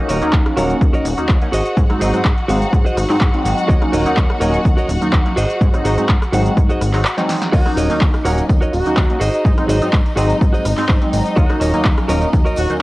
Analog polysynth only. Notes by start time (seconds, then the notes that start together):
Already playing: F#3 A#3 C#4
0.00 D#4
0.22 F#3 A#3 C#4 D#4
0.56 F#3 A#3 C#4 D#4
1.17 F#3 A#3 C#4 D#4
1.41 F#3 A#3 C#4 D#4
1.89 F#3 G#3 C4 D#4
2.13 F#3 G#3 C4 D#4
2.49 F#3 G#3 C4 D#4
3.10 F#3 G#3 C4 D#4
3.33 F#3 G#3 C4 D#4
3.81 F#3 A#3 C#4 D#4
4.05 F#3 A#3 C#4 D#4
4.40 F#3 A#3 C#4 D#4
5.01 F#3 A#3 C#4 D#4
5.25 F#3 A#3 C#4 D#4
5.73 F#3 G#3 C4 D#4
5.97 F#3 G#3 C4 D#4
6.32 F#3 G#3 C4 D#4
6.94 F#3 G#3 C4 D#4
7.17 F#3 G#3 C4 D#4
7.66 F#3 A#3 C#4 D#4
7.89 F#3 A#3 C#4 D#4
8.25 F#3 A#3 C#4 D#4
8.86 F#3 A#3 C#4 D#4
9.10 F#3 A#3 C#4 D#4
9.57 F#3 G#3 C4 D#4
9.82 F#3 G#3 C4 D#4
10.17 F#3 G#3 C4 D#4
10.78 F#3 G#3 C4 D#4
11.01 F#3 G#3 C4 D#4
11.49 F#3 A#3 C#4 D#4
11.73 F#3 A#3 C#4 D#4
12.08 F#3 A#3 C#4 D#4
12.69 F#3 A#3 C#4 D#4